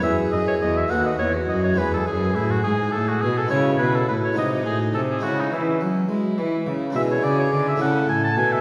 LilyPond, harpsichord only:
<<
  \new Staff \with { instrumentName = "Harpsichord" } { \time 6/8 \key e \major \tempo 4. = 70 <b e' gis'>4. <a b fis'>4. | <gis b e'>2. | <gis e' gis'>4. <gis dis' fis'>4. | <gis cis' e'>2. |
\key a \major <gis d' e'>4. <a cis' e'>4. | }
  \new Staff \with { instrumentName = "Harpsichord" } { \clef bass \time 6/8 \key e \major e,8 fis,8 e,8 dis,8 e,8 fis,8 | e,8 fis,8 a,8 gis,8 a,8 b,8 | cis8 b,8 a,8 bis,8 a,8 bis,8 | cis8 e8 fis8 gis8 e8 cis8 |
\key a \major b,8 cis8 d8 cis8 a,8 b,8 | }
>>